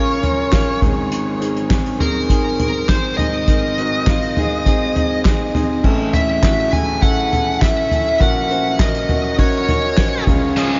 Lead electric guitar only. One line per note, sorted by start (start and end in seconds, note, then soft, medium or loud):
0.00 0.79 C#5 medium
2.01 2.92 A#4 medium
2.88 3.17 C5 medium
3.17 5.21 D#5 medium
6.14 6.75 E5 medium
6.73 7.02 G#5 medium
7.02 7.58 F#5 medium
7.62 8.23 E5 medium
8.21 8.82 F#5 medium
8.80 9.35 D#5 medium
9.39 10.24 C#5 medium